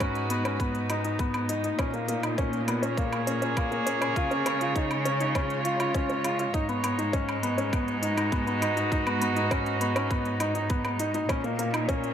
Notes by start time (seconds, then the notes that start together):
Already playing: G#2 G#3 D#4 F#4 B4
0.00 C#4, kick, closed hi-hat, low woodblock
0.15 closed hi-hat
0.30 B3, closed hi-hat
0.45 C#4, closed hi-hat, low woodblock
0.60 B3, kick, closed hi-hat
0.75 closed hi-hat
0.90 D#4, closed hi-hat, low woodblock
1.05 D#4, closed hi-hat
1.19 B3, kick, closed hi-hat
1.34 B3, closed hi-hat, low woodblock
1.49 D#4, closed hi-hat
1.64 D#4, closed hi-hat
1.79 A#2 C#4, kick, closed hi-hat, low woodblock
1.94 A#3, closed hi-hat
2.08 A#3, closed hi-hat
2.23 D#4, closed hi-hat, low woodblock
2.38 A#3 C#4, kick, closed hi-hat
2.53 closed hi-hat
2.64 B3 G#4, closed hi-hat, low woodblock
2.83 C#4 C#5, closed hi-hat
2.97 A#3, kick, closed hi-hat
3.13 closed hi-hat, low woodblock
3.27 C#4, closed hi-hat
3.42 C#4, closed hi-hat
3.57 A#3, kick, closed hi-hat, low woodblock
3.71 A#3, closed hi-hat
3.86 C#4, closed hi-hat
4.01 C#4, closed hi-hat, low woodblock
4.16 C#3 F4, kick, closed hi-hat
4.31 C#4, closed hi-hat
4.44 G#3 C#4, closed hi-hat, low woodblock
4.61 F4, closed hi-hat
4.75 D#4, kick, closed hi-hat
4.91 closed hi-hat, low woodblock
5.05 C#4, closed hi-hat
5.20 D#4 F4, closed hi-hat
5.35 C#4, kick, closed hi-hat, low woodblock
5.50 closed hi-hat
5.65 F4, closed hi-hat
5.79 F4, closed hi-hat, low woodblock
5.94 C#4, kick, closed hi-hat
6.10 C#4, closed hi-hat
6.24 F4, closed hi-hat, low woodblock
6.39 F4, closed hi-hat
6.54 G#2 D#4, kick, closed hi-hat
6.62 D#4
6.69 B3, closed hi-hat
6.84 B3, closed hi-hat, low woodblock
6.98 D#4, closed hi-hat
7.13 C#4, kick, closed hi-hat
7.29 closed hi-hat, low woodblock
7.43 B3 B4, closed hi-hat
7.58 C#4, closed hi-hat
7.73 B3, kick, closed hi-hat, low woodblock
7.79 F#4
7.88 closed hi-hat
8.02 D#4, closed hi-hat
8.17 D#4, closed hi-hat, low woodblock
8.32 B3, kick, closed hi-hat
8.47 B3, closed hi-hat
8.62 D#4, closed hi-hat, low woodblock
8.77 D#4, closed hi-hat
8.92 D#4, kick, closed hi-hat
9.06 B3, closed hi-hat, low woodblock
9.21 B3, closed hi-hat
9.36 D#4, closed hi-hat
9.51 C#4, kick, closed hi-hat, low woodblock
9.66 closed hi-hat
9.81 B3, closed hi-hat
9.96 C#4, closed hi-hat, low woodblock
10.10 B3, kick, closed hi-hat
10.25 closed hi-hat
10.40 D#4, closed hi-hat, low woodblock
10.55 D#4, closed hi-hat
10.70 B3, kick, closed hi-hat
10.85 B3, closed hi-hat, low woodblock
10.99 D#4, closed hi-hat
11.14 D#4, closed hi-hat
11.29 A#2 C#4, kick, closed hi-hat, low woodblock
11.44 A#3, closed hi-hat
11.59 A#3, closed hi-hat
11.73 D#4, closed hi-hat, low woodblock
11.79 C#5
11.88 C#4, kick, closed hi-hat
12.04 closed hi-hat